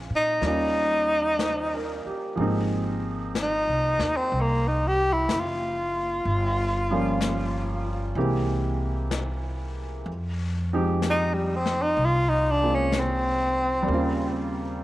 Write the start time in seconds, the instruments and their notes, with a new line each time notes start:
Already playing: grand piano C#3 G#3 C4 F4
0.10 upright bass A#2
0.16 tenor saxophone D#4
0.41 upright bass D#2, grand piano G3 A#3, brush sweep, snare
0.46 grand piano C#4 F4, tenor saxophone D#4
1.39 grand piano C5, brush sweep, snare, hi-hat pedal
1.75 grand piano A#4
2.06 grand piano G4, muted upright bass stroke
2.36 upright bass G#1, grand piano F3 G#3 A#3, brush sweep
2.40 grand piano C4 D#4
3.35 brush sweep, snare, hi-hat pedal
3.42 tenor saxophone D#4
3.67 upright bass C2
3.99 upright bass D#2, snare
4.17 tenor saxophone C4
4.32 upright bass C2, brush sweep
4.41 tenor saxophone A#3
4.68 tenor saxophone D#4
4.88 tenor saxophone G4
5.13 tenor saxophone E4
5.29 upright bass F#1, brush sweep, snare, hi-hat pedal
5.40 tenor saxophone F4
6.25 upright bass G1, brush sweep
6.91 grand piano F3 G3 A#3 C#4 F4
7.21 brush sweep, snare, hi-hat pedal
8.15 upright bass C2, grand piano E3 G#3 A#3 C4 G4, brush sweep
9.11 brush sweep, snare, hi-hat pedal
10.06 upright bass F2, brush sweep
10.73 grand piano F3 G#3 C4 D#4 G4
11.02 brush sweep, snare, hi-hat pedal
11.10 tenor saxophone D#4
11.34 tenor saxophone G3
11.56 tenor saxophone C4
11.66 snare
11.82 tenor saxophone D#4
11.97 upright bass C2, brush sweep
12.05 tenor saxophone F4
12.29 tenor saxophone D#4
12.51 tenor saxophone D4
12.62 grand piano G#3 A#3 C4 F4
12.75 tenor saxophone C#4
12.92 brush sweep, snare, hi-hat pedal
13.00 tenor saxophone C4
13.83 grand piano G3 A#3
13.88 upright bass D#2, grand piano C#3 C4, brush sweep
13.94 grand piano F4